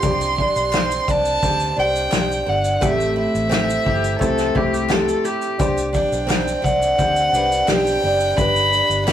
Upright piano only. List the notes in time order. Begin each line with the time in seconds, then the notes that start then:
0.03 D4 G4 C5
1.43 D4 G4 C5
1.77 D4 G4 C5
2.81 A3 C4 E4 G4 C5
4.19 A3 C4 E4 G4 C5
4.55 A3 C4 E4 G4 C5
5.59 D4 G4 C5
6.97 D4 G4 C5
7.33 D4 G4 B4
8.36 D4 G4 B4